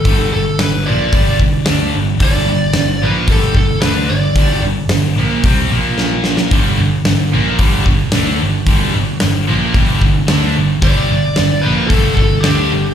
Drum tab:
HH |o---o---o---o---|o---o---o---o---|o---o---o-------|o---o---o---o---|
SD |----o-------o---|----o-------o---|----o-------o-oo|----o-------o---|
BD |o-------o-o-----|o-------o-o-----|o-------o-------|o-------o-o-----|

HH |o---o---o---o---|o---o---o---o---|
SD |----o-------o---|----o-------o---|
BD |o-------o-o-----|o-------o-o-----|